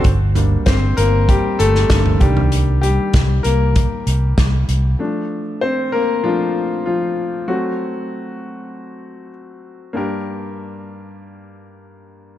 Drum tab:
HH |x-x-x-x-x-x-x-x-|x-x-x-x-x-x-x-x-|----------------|----------------|
SD |----o------oo---|----o-------o---|----------------|----------------|
FT |--o----------o-o|----------------|----------------|----------------|
BD |o---o---o---o-o-|----o---o---o---|----------------|----------------|

HH |----------------|
SD |----------------|
FT |----------------|
BD |----------------|